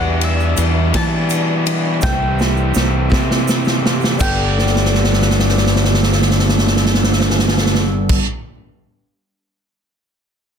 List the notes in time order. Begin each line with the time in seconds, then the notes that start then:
Already playing: E2 B2 E3 G3 B3 D4 E4 G4 D5 E5 F#5
0.21 E5, ride, shaker
0.40 shaker
0.57 E2 G3 B3 D4 G4, ride, shaker
0.93 E2 B2 E3 G3 B3 D4 E4 G4 A5, kick, snare, ride
1.30 ride, shaker
1.66 B3 D4 G4, ride, shaker
2.01 C2 C3 E3 G3 A3 C4 E4 G4 A4 C5 E5 G5, kick, snare, shaker
2.39 snare, shaker
2.57 shaker
2.74 C2 A3 C4 E4 G4, snare, shaker
3.09 C3 E3 G3 A3 C4 E4 G4, kick, snare
3.31 snare
3.48 snare, shaker
3.65 snare, shaker
3.81 C4 E4 G4
3.86 snare
4.01 snare, shaker
4.15 G2 D3
4.19 G1 G2 G3 A3 B3 A4 B4 G5, kick, crash, shaker
4.23 D4 G4
4.58 snare
4.67 snare
4.76 snare
4.85 snare
4.94 snare
5.04 snare
5.13 snare
5.22 snare
5.30 snare
5.39 snare
5.49 snare
5.57 snare
5.67 snare
5.76 snare
5.84 snare
5.94 snare
6.03 snare
6.12 snare
6.22 snare
6.31 snare
6.39 snare
6.49 snare
6.58 snare
6.67 snare
6.76 snare
6.86 snare
6.94 snare
7.03 snare
7.12 snare
7.20 snare
7.30 snare
7.39 snare
7.48 snare
7.58 snare
7.66 snare
7.75 snare
8.09 kick, crash